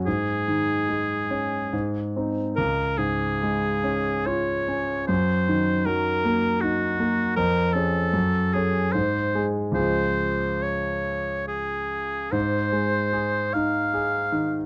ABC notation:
X:1
M:3/4
L:1/8
Q:1/4=72
K:Db
V:1 name="Oboe"
A4- A z | B A3 d2 | c2 B2 G2 | B =A2 _A c z |
c2 d2 A2 | [K:Ab] c3 f3 |]
V:2 name="Grand piano" clef=bass
A,, E, A, D A,, [CE] | D,, A,, A, D F D | G,, E, G, B, E B, | F,, [DA] G,, [D=A] _A,, [A,_A] |
[D,,F,A,A]6 | [K:Ab] A,, A, A E A E, |]